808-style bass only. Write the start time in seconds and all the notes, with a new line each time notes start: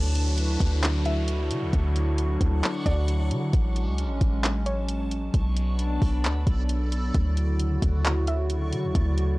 Already playing: D2
0.60 D2
1.50 D3
1.62 D2
1.73 D2
2.41 D2
2.86 D2
3.31 D3
3.53 A1
3.87 C#2
4.04 A1
4.21 A1
5.34 B1
6.02 B1
6.24 D2
6.47 B1
7.15 D2
7.82 D2
8.72 D3
8.84 D2
8.95 D2